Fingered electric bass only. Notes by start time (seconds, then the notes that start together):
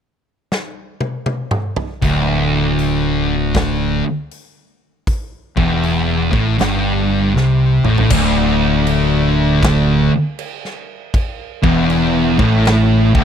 2.02 D1
5.57 E1
6.33 A1
6.60 G1
7.35 C2
7.83 A1
8.10 D1
11.63 E1
12.39 A1
13.15 D1